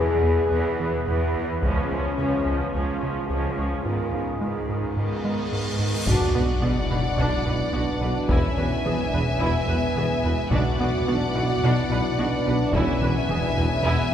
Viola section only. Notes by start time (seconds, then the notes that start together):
Already playing: E3 B3
0.23 E3 B3
0.51 E3 B3
0.79 E3 B3
1.07 E3 B3
1.35 E3 B3
1.63 F3 C#4
1.91 F3 C#4
2.19 F3 C#4
2.47 F3 C#4
2.74 F3 C#4
3.03 F3 C#4
3.31 F3 C#4
3.58 F3 C#4
3.85 D#3 B3
4.13 D#3 B3
4.41 D#3 B3
4.69 D#3 B3
4.96 D#3 B3
5.24 D#3 B3
5.52 D#3 B3
5.80 D#3 B3
6.07 D4
6.35 B4
6.63 F#4
6.91 B4
7.19 D4
7.46 B4
7.74 F#4
8.02 B4
8.30 E4
8.59 B4
8.85 G#4
9.13 B4
9.40 E4
9.69 B4
9.97 G#4
10.24 B4
10.52 D4
10.80 B4
11.08 F#4
11.36 B4
11.64 D4
11.91 B4
12.19 F#4
12.47 B4
12.75 E4
13.03 B4
13.29 G#4
13.57 B4
13.84 E4